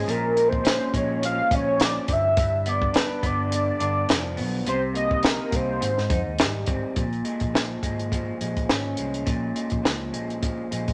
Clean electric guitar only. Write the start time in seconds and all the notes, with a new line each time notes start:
Already playing: F3 G#3 C#4
0.08 A#2
0.36 G#3
0.64 C#4
0.93 G#3
1.22 F3
1.51 C#4
1.80 F3
2.09 G2
2.37 G2
2.66 B3
2.94 D4
3.23 B3
3.50 D3
3.80 D4
4.09 F3
4.37 B3
4.67 C3
4.94 A#3
5.23 D#4
5.51 A#3
5.80 G#2
6.09 D#4
6.40 G3
6.68 C4
6.96 A#2
7.25 G#3
7.54 F3
7.83 G#3
8.12 F3
8.41 G#3
8.70 C#4
8.98 G#3
9.26 A#2
9.56 G#3
9.83 F3
10.13 G#3
10.42 F3
10.71 G#3